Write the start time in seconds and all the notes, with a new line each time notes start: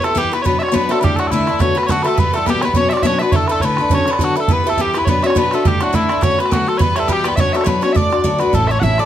0.02 A3 E4 G4 A4 B4, bodhran
0.11 bodhran
0.15 E3 G3 B3 E4 G4 B4, bodhran
0.24 bodhran
0.32 B3 E4 G4 B4, bodhran
0.42 B2 F#3 B3 D4 F#4 B4 C#5, bodhran
0.59 B3 D4 F#4 C#5 E5, bodhran
0.69 B2 F#3 B3, bodhran
0.73 B3 D4 F#4 B4 C#5, bodhran
0.89 A3 B3 D4 F#4 A4 C#5, bodhran
1.00 D3 G3 A3 D4 G4 B4
1.04 E4, bodhran
1.16 F#3 A3 D4 E4 F#4 A4, bodhran
1.26 A4, bodhran
1.31 A2 D3 E3 A3 D4 E4, bodhran
1.39 bodhran
1.47 A3 D4 E4, bodhran
1.53 bodhran
1.59 D3 A3 B3 C#4 F#4 C#5, bodhran
1.75 A3 B3 F#4 B4, bodhran
1.83 F#4 C#5, bodhran
1.88 D3 F#3 A3 B3 F#4, bodhran
2.02 A3 F#4 A4 B4, bodhran
2.07 A3 B3 A4
2.15 E3 G3 B3 B4, bodhran
2.20 B3 G4
2.31 A3 G4 A4, bodhran
2.35 E3 G3 B3 A4
2.41 bodhran
2.45 E2 B2 E3 G3 B3 G4 B4, bodhran
2.50 G4
2.54 bodhran
2.62 E3 G3 B3 G4 B4 C#5, bodhran
2.68 bodhran
2.74 B2 F#3 B3 C#4 D4 F#4 C#5, bodhran
2.89 D4 F#4 C#5 D5 E5, bodhran
2.94 B3 D4, bodhran
3.03 B2 F#3 B3 C#4 D4 F#4 C#5 E5, bodhran
3.07 C#5
3.18 B3 F#4 B4 C#5 E5, bodhran
3.23 B3 D4
3.32 D3 A3 D4 E4 A4 C#5, bodhran
3.47 A3 E4 A4 B4, bodhran
3.51 D4 A4, bodhran
3.60 A2 D3 B3 D4 E4 A4 B4 C#5, bodhran
3.65 B4, bodhran
3.77 E4 A4, bodhran
3.81 D4, bodhran
3.90 D3 F#3 B3 C#4 D4 A4 C#5, bodhran
3.95 C#5
4.06 B3 D4 A4, bodhran
4.11 B4, bodhran
4.19 D3 F#3 B3 D4 F#4 A4, bodhran
4.24 F#4
4.36 A3 B3 D4 A4 B4
4.40 A4
4.48 B3 E4 G4 B4, bodhran
4.52 B4
4.64 A3 E4 G4 A4 B4
4.69 A4, bodhran
4.77 E3 G3 B3 E4 G4 B4, bodhran
4.82 G4
4.87 bodhran
4.94 B3 E4 G4 B4, bodhran
4.98 B4, bodhran
5.05 B2 F#3 B3 D4 F#4 A4 B4 C#5, bodhran
5.09 B4
5.22 B3 C#4 D4 F#4 C#5 E5, bodhran
5.27 C#5, bodhran
5.35 B2 F#3 B3 D4 F#4 B4 C#5, bodhran
5.51 A3 B3 D4 F#4 A4 C#5, bodhran
5.65 D3 G3 A3 D4 E4 G4, bodhran
5.80 F#3 A3 D4 E4 F#4, bodhran
5.88 bodhran
5.93 A2 D3 E3 A3 D4 E4, bodhran
6.02 bodhran
6.09 A3 D4 E4, bodhran
6.16 bodhran
6.21 D3 A3 B3 C#4 F#4 C#5, bodhran
6.38 A3 B3 F#4 B4, bodhran
6.46 bodhran
6.50 D3 F#3 A3 B3 F#4, bodhran
6.66 A3 B3 F#4 A4, bodhran
6.77 E3 G3 B3 B4 C#5, bodhran
6.81 G4 B4
6.95 E3 G3 A3 B3 G4 A4 C#5, bodhran
7.03 bodhran
7.07 E2 B2 E3 G3 B3 G4 B4, bodhran
7.12 G4
7.17 bodhran
7.24 E3 G3 B3 G4 B4, bodhran
7.28 B4, bodhran
7.36 B2 F#3 B3 C#4 D4 F#4 C#5 E5, bodhran
7.40 C#5
7.53 A3 B3 D4 F#4 A4 C#5 E5, bodhran
7.61 B2 C#5, bodhran
7.65 F#3 B3 D4 F#4 B4 C#5, bodhran
7.81 B3 C#4 D4 F#4 C#5, bodhran
7.93 A3 D4 F#4 D5 E5, bodhran
7.97 D5
8.10 A3 D4 F#4 D5, bodhran
8.18 bodhran
8.24 D3 F#3 A3 D4 F#4 D5, bodhran
8.33 bodhran
8.38 A3 B3 D4 F#4 B4 D5, bodhran
8.46 bodhran
8.53 A1 A2 E3 A3 C#4 A4, bodhran
8.67 C#4 A4 C#5 E5, bodhran
8.72 A3 C#4
8.80 A1 E3 A3 E4 E5 F#5, bodhran
8.84 C#4 A4
8.98 A3 C#4 D4 A4 D5, bodhran